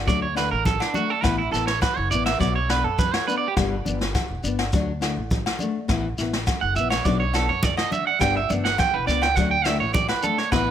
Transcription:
0.06 D2 F#3 A3 D4 D5, kick, muted conga, shekere
0.22 C#5
0.35 A3 D4 B4, snare, low agogo, shekere
0.51 A1 A#4
0.65 A4, kick, snare, muted conga, high conga, shekere
0.80 D4, snare, low agogo
0.93 A3 D4 F#4, high conga, shekere
1.10 A4
1.22 A1 E3 B3 E4 B4, kick, snare, muted conga, low agogo, shekere
1.38 E4
1.51 A1 B3 E4 A4, snare, muted conga, shekere
1.67 C#5, snare
1.82 B4, kick, snare, high conga, low agogo, shekere
1.97 F#1 C#5
2.11 A1 B3 E4 D5, shekere
2.26 E5, snare, low agogo
2.39 B1 F#3 B3 D5, muted nylon-string guitar stroke, kick, muted conga, shekere
2.56 C#5
2.69 B3 D4 B4, snare, low agogo, shekere
2.84 F#2 A4
2.99 B4, kick, muted conga, high conga, shekere
3.14 C#5, snare, low agogo
3.28 B3 D4 B4, shekere
3.38 D5
3.48 G4
3.57 G1 G3 B3 D4, muted clean electric guitar stroke, kick, snare, muted conga, low conga, low agogo, shekere
3.85 G1 B3 D4, muted conga, high conga, shekere
4.01 snare
4.15 kick, snare, high conga, low agogo, shekere
4.30 E1
4.43 G1 B3 D4, shekere
4.59 snare, low agogo
4.73 D2 F#3 A3 D4, kick, muted conga, shekere
5.01 A3 D4, snare, low agogo, shekere
5.17 A1
5.31 kick, muted conga, high conga, shekere
5.46 snare, low agogo
5.59 A3 D4, high conga, shekere
5.88 A1 E3 B3 E4, kick, snare, muted conga, low agogo, shekere
6.18 A1 B3 E4, snare, muted conga, shekere
6.33 snare
6.47 kick, snare, high conga, low agogo, shekere
6.61 F#1 F#5
6.75 A#1 B3 E4 E5, shekere
6.90 C#5, snare, low agogo
7.05 B1 F#3 B3 D4 D5, kick, muted conga, shekere
7.20 C#5
7.33 B3 D4 A4, snare, low agogo, shekere
7.49 F#2 C#5
7.63 D5, kick, snare, muted conga, high conga, shekere
7.77 D#5, snare, low agogo
7.91 D4 E5, high conga, shekere
8.07 F#5
8.19 G1 G3 B3 D4 G5, kick, snare, muted conga, low conga, low agogo, shekere
8.37 E5
8.50 G1 B3 D4, muted clean electric guitar stroke, muted conga, high conga, shekere
8.65 F#5, snare
8.78 G5, kick, snare, high conga, low agogo, shekere
8.94 E1 B4
9.07 C#2 B3 D4 D5, snare, shekere
9.22 G5, snare, low agogo
9.37 D2 F#3 A3 D4 F#5, kick, muted conga, shekere
9.51 G5
9.65 A3 D4 E5, snare, low agogo, shekere
9.80 A1 C#5
9.94 D5, kick, muted conga, high conga, shekere
10.09 B4, snare, low agogo
10.23 A3 D4 A4, high conga, shekere
10.38 C#5, snare
10.52 A1 E3 B3 E4 B4, kick, snare, low agogo, shekere

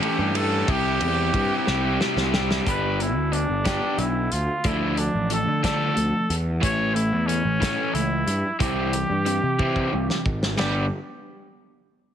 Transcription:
0.01 E3 A3 C#4 G4 A4, ride
0.19 G2
0.34 E3 A3 C#4 A4, ride
0.67 C2 G3 C4 E4 G4, kick, ride
1.00 E2 G3 C4 E4 G4, ride
1.34 G2 G3 C4 E4 G4, kick, ride
1.67 C2 G3 C4 E4 G4, snare
2.00 G3 C4 E4 G4, snare
2.16 C2, snare
2.33 G3 C4 E4 G4, snare
2.51 snare
2.66 G1 B3 D4 G4 B4, kick, closed hi-hat
3.00 B3 D4 E4, closed hi-hat
3.15 D2
3.32 B3 D4, closed hi-hat
3.49 G1
3.65 B3 D4 G4, kick, snare, closed hi-hat
3.98 B1 B3 D4 E4, closed hi-hat
4.32 D2 F4, closed hi-hat
4.64 D2 F3 A3 D4 E4, kick, closed hi-hat
4.97 F3 A3 D4, closed hi-hat
5.15 A1
5.30 F3 A3 A4, closed hi-hat
5.47 D3
5.63 F3 A3 D4 A4, kick, snare, closed hi-hat
5.96 D2 F3 A3, closed hi-hat
6.30 E2, closed hi-hat
6.61 A1 E3 A3 C#4 C#5, kick, closed hi-hat
6.94 E3 A3 E4, closed hi-hat
7.13 E2
7.26 E3 A3 C#4, closed hi-hat
7.45 A1
7.60 E3 A3 C#4, kick, snare, closed hi-hat
7.94 C#2 E3 A3 E4, closed hi-hat
8.27 G2, closed hi-hat
8.59 C2 E3 C4 E4 G4, kick, closed hi-hat
8.93 E3 C4, closed hi-hat
9.10 G2
9.26 E3 C4, closed hi-hat
9.43 C3
9.59 E3 C4 E4, kick
9.76 kick
9.92 C2 E3 C4
10.10 snare
10.26 G#1, kick
10.43 snare
10.58 G1 G3 B3 D4 G4, snare, crash

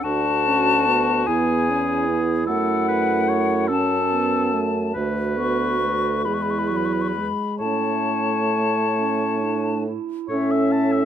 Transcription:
0.04 D2 D4 F#4 A5
0.47 C#4
0.86 B3
1.26 E2 B3 E4 G#4 G#5
1.69 C#4
2.08 B3
2.47 F#2 A3 A4 F#5
2.88 B4
3.29 C#5
3.68 C#4 A4 A5
4.11 B3
4.52 A3
4.94 D2 A3 F#4 B4
5.37 B3 C#6
5.81 A3
6.25 E2 G#3 E4 B4 B5
6.34 C#6
6.42 B5
6.50 C#6
6.59 B5
6.68 F#3 C#6
6.76 B5
6.85 C#6
6.93 B5
7.01 C#6
7.08 B5
7.16 G#3
7.59 A2 A3 C#4 C#5 A5
8.96 C#4
9.42 D4
9.87 E4
10.28 A2 C#4 A4 C#5 E5
10.51 E5
10.72 A5
10.92 E5

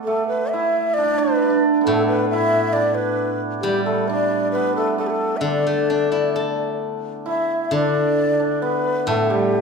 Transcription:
Already playing: B3 D4 E4
0.04 A3 A4
0.28 B4
0.50 E4 E5
0.94 D5
0.98 D4
1.05 D4
1.14 D4
1.19 D4 B4
1.27 D4
1.35 D4
1.42 D4
1.50 D4
1.81 B3 A4
1.87 A2 A3
2.07 B4
2.30 E4 E5
2.73 D4 D5
2.95 B4
3.61 G3 G4
3.65 G3
3.85 A3 A4
4.08 D4 D5
4.51 B3 B4
4.76 A3 A4
4.98 A3 A4
5.07 G4 A4
5.37 E5
5.41 D3 D4 D5
5.67 A3
5.90 D4
6.12 E4
6.36 A4
7.26 E4 E5
7.64 E5
7.71 D3 D4 D5
8.40 D4
8.62 B3 B4
9.07 A2 A3 A4
9.30 G3 G4

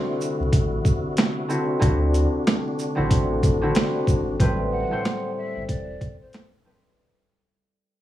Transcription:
Already playing: C3 D3 C4 E4 F#4
0.21 shaker
0.40 C2
0.53 A1, kick, closed hi-hat
0.85 kick, shaker
1.17 snare, closed hi-hat
1.48 D3 C4 E4 F#4, shaker
1.79 D2 D3 C4 D4 E4 F#4, kick, closed hi-hat
2.14 closed hi-hat, shaker
2.47 snare, closed hi-hat
2.79 shaker
2.95 A1 D3 C4 E4 F#4
3.11 kick, closed hi-hat
3.43 kick, closed hi-hat, shaker
3.61 D3 C4 E4 F#4
3.75 snare, closed hi-hat
4.07 G#1, kick, shaker
4.39 A1 A2 G3 C4 B4, kick, closed hi-hat
4.71 F#5
4.91 A2 G3 C4 C5
5.05 snare, closed hi-hat
5.38 E5
5.56 G1
5.67 E1 D5, kick, closed hi-hat
6.01 kick, closed hi-hat
6.21 C5
6.33 snare, closed hi-hat
6.64 A2 G3 C4 B4

